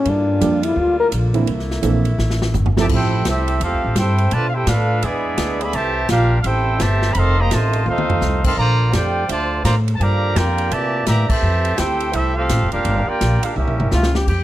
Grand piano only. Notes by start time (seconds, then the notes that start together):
0.40 F3 G3 A#3 D4 G4
1.34 E3 A#3 C4 D4 E4
1.82 E3 A#3 C4 D4 A4
2.77 F3 A3 C4 E4 A4